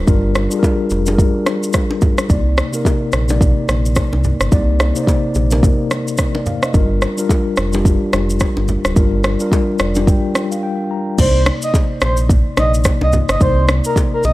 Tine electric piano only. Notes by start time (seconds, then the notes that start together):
Already playing: G3 D4 F4 A#4
0.06 G3 D4 F4 A#4
0.50 G3 D4 F4 G#4
0.59 A#4
1.06 G3 D4 F4 G#4
1.15 A#4
2.29 C3 A#3 D#4 D5
2.72 C3 A#3 D#4 A#4
3.28 C3 A#3 D#4 D5
4.51 C3 A#3 D#4 D5
4.94 C3 A#3 D#4 C5
5.04 D5
5.50 C3 A#3 D#4 A#4
6.35 D5
6.46 F5
6.63 D#5
6.73 G3 D4 F4 A#4
7.17 G3 D4 F4 A#4
7.72 G3 D4 F4 G4
8.95 G3 D4 F4 A#4
9.39 G3 D4 F4 A#4
9.80 D5
9.94 G3 D4 F4 G4
10.07 G5
10.51 F5
10.63 G5
10.91 A#5
11.18 C3 A#3 D4 D5
11.26 D#4
12.56 C3 A#3 D#4 D5
13.40 C3 A#3 D#4 D5